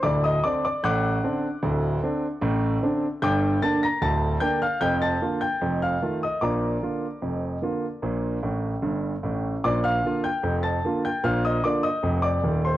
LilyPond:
<<
  \new Staff \with { instrumentName = "Grand piano" } { \time 2/4 \key bes \major \tempo 4 = 75 <d'' d'''>16 <ees'' ees'''>16 <d'' d'''>16 <d'' d'''>16 <fis'' d''' fis'''>4~ | <fis'' d''' fis'''>2 | <g'' d''' g'''>8 <a'' a'''>16 <bes'' bes'''>16 <a'' a'''>8 <g'' g'''>16 <f'' f'''>16 | <g'' g'''>16 <a'' a'''>8 <g'' g'''>8 <f'' f'''>8 <ees'' ees'''>16 |
<d'' bes'' d'''>2~ | <d'' bes'' d'''>4. r8 | <d'' d'''>16 <f'' f'''>8 <g'' g'''>8 <a'' a'''>8 <g'' g'''>16 | <f'' f'''>16 <ees'' ees'''>16 <d'' d'''>16 <ees'' ees'''>8 <d'' d'''>8 <c'' c'''>16 | }
  \new Staff \with { instrumentName = "Grand piano" } { \clef bass \time 2/4 \key bes \major <d,, d,>8 <d c' d'>8 <a,, a,>8 <d c' d'>8 | <d,, d,>8 <d c' d'>8 <a,, a,>8 <d c' d'>8 | <g,, g,>8 <d bes d'>8 <d,, d,>8 <d bes d'>8 | <f,, f,>8 <d bes f'>8 <f,, f,>8 <ees a f'>8 |
<bes,, bes,>8 <d bes f'>8 <f,, f,>8 <d bes f'>8 | <bes,, bes,>8 <a,, a,>8 <g,, g,>8 <a,, a,>8 | <bes,, bes,>8 <d bes f'>8 <f,, f,>8 <d bes f'>8 | <bes,, bes,>8 <d bes f'>8 <f,, f,>8 <ees,, ees,>8 | }
>>